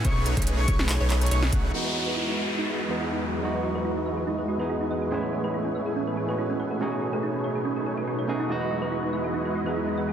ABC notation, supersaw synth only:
X:1
M:4/4
L:1/16
Q:1/4=142
K:E
V:1 name="Supersaw synth"
[A,DGBc]3 [A,DGBc]3 [A,DGBc]3 [A,DGBc]3 [A,DGBc]2 [A,DGBf]2 | [G,EFBd]3 [G,EFBd]3 [G,EFBd]3 [G,EFBd]3 [G,EFBd]2 [G,EFBf]2 | [G,EFBd]3 [G,EFBd]3 [G,EFBd]3 [G,EFBd]3 [G,EFBd]2 [G,EFBf]2 | [A,EGBc]3 [A,EGBc]3 [A,EGBc]3 [A,EGBc]3 [A,EGBc]2 [A,EGBf]2 |
[A,DGBc]3 [A,DGBc]3 [A,DGBc]3 [A,DGBc]3 [A,DGBc]2 [A,DGBf]2 | [G,EFBd]3 [G,EFBd]3 [G,EFBd]3 [G,EFBd]3 [G,EFBd]2 [G,EFBf]2 |]